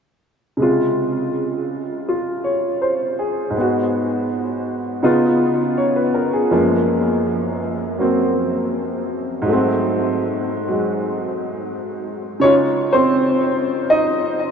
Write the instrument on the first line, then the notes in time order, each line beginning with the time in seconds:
upright piano
0.57 C3 C#3 G#3
0.62 F4
2.09 F4
2.44 C#5
2.82 C5
3.19 G#4
3.50 G#2 G#3
3.57 B3 F#4
5.03 C#3 B3 D#4 F4
5.77 C#5
5.96 B4
6.14 A#4
6.33 G#4
6.51 F#2 F3 G#3 A#3
7.98 F#3 A#3 C4
9.42 G#2 F#3
9.49 A3 C4
10.68 F#3 G#3
12.40 C#3 G#3 C#4 D#4 C#5
12.45 F4
12.93 C4 C5
13.90 D#4 D#5